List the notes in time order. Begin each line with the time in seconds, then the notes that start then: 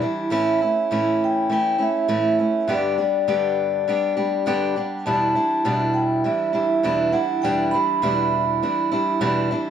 0.01 E3 G3 D4 E4
0.30 A2 E3 A3 C#4 E4 E5
0.61 A3 C#4 E4
0.91 A2 E3 A3 C#4 E4
1.24 G5
1.49 E3 A3 C#4 E4 G5
1.78 A3 C#4 E4
1.83 E5
2.08 A2 E3 A3 C#4 E4
2.39 A3 C#4 E4
2.67 G2 D3 G3 B3 D4 G4
2.72 D5
2.98 G3 B3 D4 G4
3.02 D5
3.27 G2 D3 G3 B3 D4 G4
3.88 G3 B3 D4 G4
4.17 G3 B3 D4 G4
4.46 G2 D3 G3 B3 D4 G4
4.76 G3 B3 D4 G4
5.06 E2 B2 E3 G3 D4 E4 A5
5.35 E3 G3 D4 E4
5.65 E2 B2 E3 G3 D4 E4
5.94 G5
6.24 E3 G3 D4 E4 E5
6.53 E3 G3 D4 E4 E5
6.83 E2 B2 E3 G3 D4 E4
7.12 E3 G3 D4 E4 F#5
7.42 E2 B2 E3 G3 D4 E4 G5
7.71 E3 G3 D4 E4 B5
8.02 E2 B2 E3 G3 D4 E4 B5
8.63 E3 G3 D4 E4
8.91 E3 G3 D4 E4
9.21 E2 B2 E3 G3 D4 E4
9.51 E3 G3 D4 E4